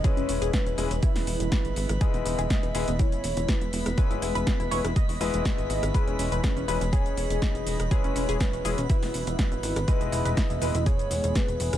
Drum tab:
HH |xxoxxxoxxooxxxox|xxoxxxoxxxoxxxox|xxoxxxoxxooxxxox|xxoxxxoxxxoxxxox|
SH |xxxxxxxxxxxxxxxx|xxxxxxxxxxxxxxxx|xxxxxxxxxxxxxxxx|xxxxxxxxxxxxxxxx|
SD |----o----o--o--r|----o-------o--r|----o--r----o--r|----o-------o--r|
BD |o---o---o---o---|o---o---o---o---|o---o---o---o---|o---o---o---o---|

HH |xxoxxxoxxooxxxox|xxoxxxoxxxoxxxox|
SH |xxxxxxxxxxxxxxxx|xxxxxxxxxxxxxxxx|
SD |----o----o--o--r|----o-------o--r|
BD |o---o---o---o---|o---o---o---o---|